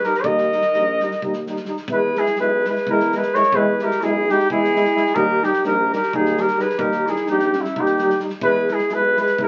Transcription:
0.04 G3 D#4 G4 A#4, snare
0.14 snare
0.24 D#2 G3 D#4 A#4 D#5, kick
0.38 snare
0.52 G3 D#4, snare
0.61 snare
0.73 A#1 G3 D#4, snare
1.00 G3 D#4, snare
1.11 snare
1.22 D#2 G3 D#4, kick
1.33 snare
1.46 G3 D#4, snare
1.56 snare
1.65 G3 D#4, snare
1.77 snare
1.88 E2 G#3 E4, kick
1.92 G#4 B4
2.15 G#3 E4 G#4, snare
2.22 E4, snare
2.36 B1 G#3 E4, snare
2.40 G#4 B4
2.65 G#3, snare
2.69 E4 G#4 B4
2.76 snare
2.86 E2 G#3 E4, kick
2.91 A#4
3.00 snare
3.12 G#3 E4 G#4, snare
3.17 B4
3.22 snare
3.34 G#3 E4 A#4 C#5, snare
3.43 snare
3.52 E2 G#3 E4 G#4 B4, kick
3.79 E4 G4, snare
3.83 G#3 A#4
3.91 snare
4.01 B1 G#3 E4 G#4, snare
4.29 G#3 D#4 E4 G4, snare
4.40 snare
4.49 E2 G#3 E4 G#4, kick
4.64 snare
4.75 G#3 E4, snare
4.85 snare
4.94 G#3 E4, snare
5.06 snare
5.14 D#2 G3 D#4 G4 A#4, kick
5.42 G3 D#4 G4, snare
5.53 snare
5.63 A#1 G3 D#4 G4 A#4, snare
5.92 G3 D#4 G4 A#4, snare
6.03 snare
6.13 D#2 G3 D#4 G#4, kick
6.26 snare
6.37 G3 D#4 G4 A#4, snare
6.48 snare
6.57 G3 D#4 G#4, snare
6.61 B4
6.70 snare
6.78 D#2 G3 D#4 G4 A#4, kick
6.92 snare
7.06 G3 D#4 E4 G#4, snare
7.16 snare
7.25 A#1 G3 D#4, snare
7.31 G4
7.39 snare
7.53 C#4 D#4, snare
7.58 G3 E4
7.64 snare
7.75 D#2 D#4, kick
7.80 G3 G4
7.86 snare
7.98 D#4, snare
8.03 G3
8.10 snare
8.20 G3 D#4, snare
8.29 snare
8.40 E2 E4 G#4 B4, kick
8.46 G#3
8.68 G#3 E4, snare
8.73 G#4
8.78 snare
8.89 B1 E4 G#4, snare
8.94 G#3 B4
9.15 E4, snare
9.20 G#3 G#4 B4
9.26 snare
9.38 E2 G#3 E4, kick
9.43 A#4

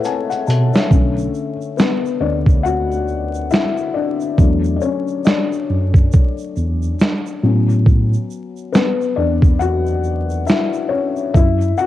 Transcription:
Already playing: A3 E4 G#4 B4 C#5 E5 F#5
0.04 F#5 G#5 A5, shaker
0.30 F#5, shaker
0.47 B2 A5, closed hi-hat, shaker
0.50 shaker
0.74 C#5 E5, snare, shaker
0.90 B1 D3 A3 C#4, kick, shaker
1.18 shaker
1.35 shaker
1.62 shaker
1.77 B3 B4, snare, shaker
2.06 shaker
2.21 D2 D3 A3 D4 C#5 D5
2.47 kick, shaker
2.63 F#4 F#5, shaker
2.92 shaker
3.08 shaker
3.34 shaker
3.51 E4 E5, snare, shaker
3.77 shaker
3.94 D4 D5
4.20 shaker
4.38 E2 F#3 A3 D4, kick, shaker
4.64 shaker
4.76 D5
4.81 C#4 C#5, shaker
5.08 shaker
5.24 D4 D5, snare, shaker
5.52 shaker
5.70 F#2
5.94 kick, shaker
6.12 kick, shaker
6.38 shaker
6.56 E2, shaker
6.82 shaker
7.00 snare, shaker
7.26 shaker
7.43 A2 F#3 B3 C#4
7.70 shaker
7.86 kick, shaker
8.14 shaker
8.31 shaker
8.57 shaker
8.72 B3 B4, snare, shaker
9.01 shaker
9.16 E2 D4 D5
9.42 kick, shaker
9.59 F#4 F#5, shaker
9.87 shaker
10.04 shaker
10.30 shaker
10.47 E4 E5, snare, shaker
10.74 shaker
10.89 C#4 C#5
11.17 shaker
11.34 F#2 E4 E5, kick, shaker
11.61 shaker
11.78 F#4 F#5, shaker

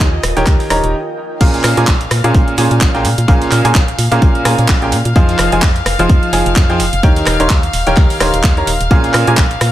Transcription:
Already playing: F4 A#4 D#5 D#6
0.00 D#2, kick, snare, closed hi-hat
0.23 D#1, cross-stick, closed hi-hat, open hi-hat
0.37 D#1 D#3 D#4 G4 A#4 C#5 G5, snare, closed hi-hat
0.46 D#2, kick, clap, closed hi-hat
0.60 open hi-hat
0.70 D#1 D#3 D#4 G4 A#4 C#5 A#5, cross-stick, closed hi-hat, open hi-hat
0.84 D#1, closed hi-hat
1.41 A#1 A#2 C#4 F4 G#4 A#4 F5 F6, kick, closed hi-hat, crash
1.54 snare, closed hi-hat
1.64 A#2, cross-stick, snare, clap, closed hi-hat, open hi-hat
1.77 A#2 C#4 F4 G#4 A#4 G#5, closed hi-hat
1.87 A#1, kick, snare, clap, open hi-hat
2.01 closed hi-hat
2.11 A#2, cross-stick, snare, closed hi-hat, open hi-hat
2.24 A#2 C#4 F4 G#4 A#4 F5, closed hi-hat
2.34 A#1, kick, closed hi-hat
2.48 closed hi-hat
2.58 A#2 C#4 F4 G#4 A#4 G#5, closed hi-hat, open hi-hat
2.71 A#2, closed hi-hat
2.81 A#1, kick, snare, clap, closed hi-hat
2.94 A#2 C#4 F4 G#4 A#4 G5, snare, closed hi-hat
3.05 A#2, closed hi-hat, open hi-hat
3.18 A#2, closed hi-hat
3.28 A#1 A#2 C#4 F4 G#4 A#4 F5, kick, closed hi-hat
3.42 snare, closed hi-hat
3.51 A#2, clap, closed hi-hat, open hi-hat
3.65 A#2 C#4 F4 G#4 A#4 G#5, closed hi-hat
3.75 A#1, kick, snare, clap, closed hi-hat
3.88 closed hi-hat
3.98 A#2, closed hi-hat, open hi-hat
4.11 A#2 C#4 F4 G#4 A#4 F5, snare, closed hi-hat
4.22 A#1, kick, closed hi-hat
4.35 closed hi-hat
4.45 A#2 C#4 F4 G#4 A#4 G#5, cross-stick, closed hi-hat, open hi-hat
4.58 A#2, closed hi-hat
4.68 A#1, kick, snare, clap, closed hi-hat
4.82 A#2 C#4 F4 G#4 A#4 G5, closed hi-hat
4.92 A#2, closed hi-hat, open hi-hat
5.05 A#2, closed hi-hat
5.16 F2 F3 D#4 F4 G#4 C5 F5, kick, closed hi-hat
5.29 snare, closed hi-hat
5.39 F1, cross-stick, snare, clap, closed hi-hat, open hi-hat
5.52 F1 F3 D#4 F4 G#4 C5 G#5, closed hi-hat
5.62 F2, kick, snare, clap, open hi-hat
5.76 closed hi-hat
5.86 F1, cross-stick, snare, closed hi-hat, open hi-hat
5.99 F1 F3 D#4 F4 G#4 C5 F5, closed hi-hat
6.09 F2, kick, closed hi-hat
6.23 closed hi-hat
6.33 F1 F3 D#4 F4 G#4 C5 G#5, closed hi-hat, open hi-hat
6.46 F1, closed hi-hat
6.56 F2, kick, snare, clap, closed hi-hat
6.70 F3 D#4 F4 G#4 C5 G5, snare, closed hi-hat
6.80 F1, closed hi-hat, open hi-hat
6.93 F1, closed hi-hat
7.03 D#2 D#3 D#4 G4 A#4 C#5 G5, kick, closed hi-hat
7.16 snare, closed hi-hat
7.26 D#1, cross-stick, clap, closed hi-hat, open hi-hat
7.40 D#1 D#3 D#4 G4 A#4 C#5 C6, closed hi-hat
7.50 D#2, kick, snare, clap, closed hi-hat
7.63 closed hi-hat
7.73 D#1, closed hi-hat, open hi-hat
7.87 D#1 D#3 D#4 G4 A#4 C#5 G5, snare, closed hi-hat
7.97 D#2, kick, snare, clap, closed hi-hat
8.10 open hi-hat
8.20 D#1 D#3 D#4 G4 A#4 C#5 C6, cross-stick, snare, open hi-hat
8.34 D#1, closed hi-hat
8.43 D#2, kick, snare, clap, closed hi-hat
8.57 D#3 D#4 G4 A#4 C#5 A#5, closed hi-hat
8.67 D#1, closed hi-hat, open hi-hat
8.81 D#1, closed hi-hat
8.91 A#1 A#2 C#4 F4 G#4 A#4 F5, kick, closed hi-hat
9.04 snare, closed hi-hat
9.14 A#2, cross-stick, snare, clap, closed hi-hat, open hi-hat
9.27 A#2 C#4 F4 G#4 A#4 G#5, closed hi-hat
9.37 A#1, kick, snare, clap, open hi-hat
9.51 closed hi-hat
9.61 A#2, cross-stick, snare, closed hi-hat, open hi-hat

